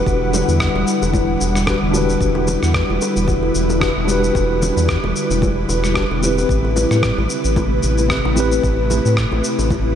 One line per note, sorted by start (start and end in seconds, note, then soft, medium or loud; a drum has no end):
0.00 6.46 D3 medium
0.00 6.46 G3 medium
0.00 1.63 D4 medium
0.00 6.46 E4 medium
0.00 1.64 F#4 medium
0.00 1.65 G4 medium
0.00 1.66 B4 medium
0.00 9.95 B4 medium
0.00 2.17 F#5 medium
0.06 0.43 E1 loud
0.06 kick loud
0.06 high bongo soft
0.06 shaker soft
0.33 high bongo medium
0.33 high conga medium
0.33 low conga medium
0.33 shaker medium
0.48 0.69 E2 medium
0.48 shaker soft
0.60 kick loud
0.60 cross-stick medium
0.60 shaker soft
0.75 0.84 E1 loud
0.75 high bongo soft
0.75 high conga medium
0.88 shaker medium
1.02 1.37 E1 medium
1.02 high bongo medium
1.02 shaker soft
1.14 kick loud
1.14 high conga medium
1.14 shaker soft
1.41 1.78 E1 medium
1.41 high bongo soft
1.41 shaker medium
1.55 cross-stick soft
1.55 high conga medium
1.55 shaker soft
1.66 1.75 D4 medium
1.66 1.76 F#4 medium
1.66 1.76 G4 medium
1.66 1.77 B4 medium
1.66 kick loud
1.66 cross-stick medium
1.66 high bongo medium
1.66 shaker soft
1.83 2.17 E1 medium
1.91 3.77 D4 medium
1.91 3.78 F#4 medium
1.91 high conga medium
1.91 shaker medium
1.95 3.79 G4 medium
1.95 3.81 B4 medium
2.09 high bongo soft
2.09 shaker soft
2.21 2.58 E1 loud
2.21 kick loud
2.21 shaker soft
2.35 high bongo medium
2.47 high conga medium
2.47 low conga medium
2.47 shaker medium
2.63 2.83 E2 medium
2.63 cross-stick soft
2.63 shaker soft
2.74 kick medium
2.74 cross-stick medium
2.74 high bongo soft
2.74 shaker soft
2.90 2.99 E1 medium
2.90 high conga medium
3.02 high bongo medium
3.02 shaker medium
3.16 3.51 E1 medium
3.16 shaker soft
3.28 kick loud
3.28 high conga medium
3.28 shaker soft
3.43 high bongo soft
3.55 3.92 E1 medium
3.55 shaker medium
3.70 high bongo medium
3.70 high conga medium
3.70 shaker soft
3.80 3.89 D4 medium
3.80 3.89 F#4 medium
3.80 3.90 G4 medium
3.80 3.91 B4 medium
3.80 kick loud
3.80 cross-stick loud
3.80 shaker soft
3.97 4.31 E1 medium
4.05 5.91 D4 medium
4.05 5.93 F#4 medium
4.05 high bongo soft
4.05 high conga medium
4.05 shaker medium
4.09 5.93 G4 medium
4.09 5.95 B4 medium
4.24 shaker soft
4.35 4.72 E1 loud
4.35 kick loud
4.35 high bongo medium
4.35 shaker soft
4.62 high conga medium
4.62 low conga medium
4.62 shaker medium
4.77 4.98 E2 medium
4.77 high bongo soft
4.77 shaker soft
4.88 kick loud
4.88 cross-stick medium
4.88 shaker soft
5.04 5.13 E1 loud
5.04 high bongo medium
5.04 high conga medium
5.16 shaker medium
5.30 5.65 E1 medium
5.30 low conga medium
5.30 shaker soft
5.42 kick loud
5.42 high bongo soft
5.42 high conga medium
5.42 shaker soft
5.69 6.06 E1 medium
5.69 high bongo medium
5.69 shaker medium
5.84 cross-stick soft
5.84 high conga medium
5.84 shaker soft
5.94 6.03 D4 medium
5.94 6.04 F#4 medium
5.94 6.04 G4 medium
5.94 6.05 B4 medium
5.94 kick loud
5.94 cross-stick medium
5.94 shaker soft
6.11 6.45 E1 medium
6.11 high bongo soft
6.19 8.06 C4 medium
6.19 8.07 E4 medium
6.23 8.08 G4 medium
6.23 8.09 B4 medium
6.23 high conga medium
6.23 shaker medium
6.38 high bongo medium
6.38 shaker soft
6.49 6.86 A1 loud
6.49 9.95 C3 medium
6.49 9.95 A3 medium
6.49 9.95 E4 medium
6.49 kick loud
6.49 shaker soft
6.64 high bongo soft
6.76 high conga medium
6.76 low conga medium
6.76 shaker medium
6.91 7.12 A2 medium
6.91 cross-stick soft
6.91 high bongo medium
6.91 shaker soft
7.03 kick medium
7.03 cross-stick medium
7.03 shaker soft
7.18 7.27 A1 loud
7.18 high conga medium
7.30 high bongo soft
7.30 shaker medium
7.45 7.79 A1 medium
7.45 shaker soft
7.56 kick loud
7.56 high bongo medium
7.56 high conga medium
7.56 shaker soft
7.83 8.20 A1 medium
7.83 shaker medium
7.98 high bongo soft
7.98 high conga medium
7.98 shaker soft
8.09 8.18 C4 medium
8.09 8.18 E4 medium
8.09 8.19 G4 medium
8.09 8.19 B4 medium
8.09 kick loud
8.09 cross-stick medium
8.09 shaker soft
8.25 8.60 A1 medium
8.25 high bongo medium
8.34 9.95 C4 medium
8.34 9.95 E4 medium
8.34 high conga medium
8.34 shaker medium
8.38 9.95 G4 medium
8.38 9.95 B4 medium
8.52 shaker soft
8.63 9.00 A1 loud
8.63 kick loud
8.63 high bongo soft
8.63 shaker soft
8.90 high bongo medium
8.90 high conga medium
8.90 low conga medium
8.90 shaker medium
9.05 9.26 A2 medium
9.05 shaker soft
9.17 kick medium
9.17 cross-stick medium
9.17 shaker soft
9.32 9.42 A1 medium
9.32 high bongo soft
9.32 high conga medium
9.44 shaker medium
9.59 9.94 A1 medium
9.59 high bongo medium
9.59 shaker soft
9.70 kick medium
9.70 high conga medium
9.70 shaker soft